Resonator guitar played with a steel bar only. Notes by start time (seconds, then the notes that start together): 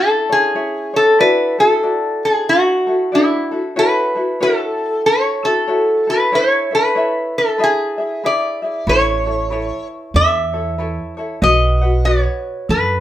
Already playing: A4
0.32 G#4
0.96 A4
1.21 B4
1.60 A4
2.25 G#4
2.49 F#4
3.15 E4
3.79 B4
4.43 A4
5.06 C#5
5.45 A4
6.10 B4
6.35 C#5
6.75 B4
7.38 A4
7.64 G#4
8.26 D5
8.89 C#5
10.16 E5
11.43 D#5
12.05 C#5
12.70 B4